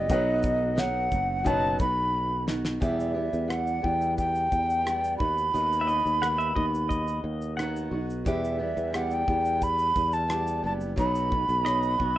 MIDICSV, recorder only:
0, 0, Header, 1, 2, 480
1, 0, Start_track
1, 0, Key_signature, 1, "minor"
1, 0, Tempo, 680272
1, 69, Time_signature, 4, 2, 24, 8
1, 8595, End_track
2, 0, Start_track
2, 0, Title_t, "Recorder"
2, 0, Program_c, 0, 74
2, 0, Note_on_c, 0, 75, 104
2, 559, Note_on_c, 0, 78, 107
2, 570, Note_off_c, 0, 75, 0
2, 1036, Note_on_c, 0, 81, 116
2, 1047, Note_off_c, 0, 78, 0
2, 1273, Note_off_c, 0, 81, 0
2, 1277, Note_on_c, 0, 83, 91
2, 1725, Note_off_c, 0, 83, 0
2, 1996, Note_on_c, 0, 76, 73
2, 2465, Note_on_c, 0, 78, 84
2, 2476, Note_off_c, 0, 76, 0
2, 2707, Note_on_c, 0, 79, 83
2, 2718, Note_off_c, 0, 78, 0
2, 2944, Note_off_c, 0, 79, 0
2, 2948, Note_on_c, 0, 79, 99
2, 3642, Note_off_c, 0, 79, 0
2, 3655, Note_on_c, 0, 83, 98
2, 5076, Note_off_c, 0, 83, 0
2, 5840, Note_on_c, 0, 76, 89
2, 6322, Note_on_c, 0, 78, 91
2, 6332, Note_off_c, 0, 76, 0
2, 6445, Note_on_c, 0, 79, 94
2, 6456, Note_off_c, 0, 78, 0
2, 6796, Note_on_c, 0, 83, 114
2, 6807, Note_off_c, 0, 79, 0
2, 7151, Note_on_c, 0, 81, 94
2, 7161, Note_off_c, 0, 83, 0
2, 7510, Note_off_c, 0, 81, 0
2, 7519, Note_on_c, 0, 81, 89
2, 7572, Note_off_c, 0, 81, 0
2, 7755, Note_on_c, 0, 83, 101
2, 8595, Note_off_c, 0, 83, 0
2, 8595, End_track
0, 0, End_of_file